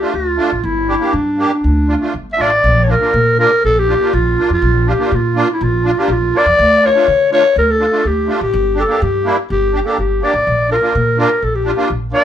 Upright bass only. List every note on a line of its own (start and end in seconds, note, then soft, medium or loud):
0.14 0.36 D2 medium
0.52 0.59 A1 medium
0.64 0.94 G1 medium
1.13 1.44 G2 medium
1.64 1.94 D2 medium
2.14 2.37 G1 medium
2.39 2.62 A1 medium
2.64 2.94 A#1 loud
3.14 3.43 A#2 medium
3.64 3.94 A#1 medium
4.13 4.35 A#1 medium
4.50 4.57 F2 medium
4.62 4.91 A#1 loud
5.12 5.41 A#2 medium
5.61 5.90 A#1 medium
6.08 6.30 A#1 medium
6.46 6.53 F2 medium
6.59 6.88 D2 loud
7.08 7.37 D3 medium
7.56 7.85 D2 medium
8.05 8.26 D2 medium
8.41 8.48 A1 medium
8.53 8.82 G1 loud
9.02 9.30 G2 loud
9.50 9.79 G1 medium
9.98 10.19 G1 medium
10.34 10.41 A1 medium
10.47 10.75 A#1 medium
10.95 11.23 A#2 loud
11.42 11.71 A#1 medium
11.90 12.11 A#1 medium